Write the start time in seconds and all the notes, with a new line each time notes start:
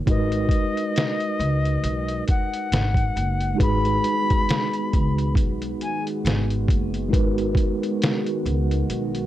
0.06 G#1 G#3 D#4 F#4 A#4 D#5, kick, closed hi-hat
0.11 B4
0.32 closed hi-hat
0.49 kick, closed hi-hat
0.77 closed hi-hat
0.96 snare, closed hi-hat
1.20 closed hi-hat
1.39 C#2, closed hi-hat
1.65 closed hi-hat
1.84 B1, closed hi-hat
2.08 closed hi-hat
2.28 F#5, kick, closed hi-hat
2.54 closed hi-hat
2.72 G#1, snare, closed hi-hat
2.94 kick, closed hi-hat
3.16 F#1, closed hi-hat
3.41 closed hi-hat
3.55 G#3 D#4 F#4 G#4
3.59 G#1 D#3 G#3 B3 F#4 B4 B5, kick, closed hi-hat
3.85 closed hi-hat
4.04 closed hi-hat
4.30 kick, closed hi-hat
4.49 snare, closed hi-hat
4.73 closed hi-hat
4.93 C#2, kick, closed hi-hat
5.18 closed hi-hat
5.35 B1, kick, closed hi-hat
5.62 closed hi-hat
5.81 G#5, closed hi-hat
6.07 closed hi-hat
6.25 G#1, snare, closed hi-hat
6.50 closed hi-hat
6.68 F#1, kick, closed hi-hat
6.94 closed hi-hat
7.08 G#3 D#4 F#4 A#4
7.13 G#1 B4, kick, closed hi-hat
7.38 closed hi-hat
7.55 kick, closed hi-hat
7.83 closed hi-hat
8.02 snare, closed hi-hat
8.26 closed hi-hat
8.46 C#2, closed hi-hat
8.71 closed hi-hat
8.90 B1, closed hi-hat
9.15 closed hi-hat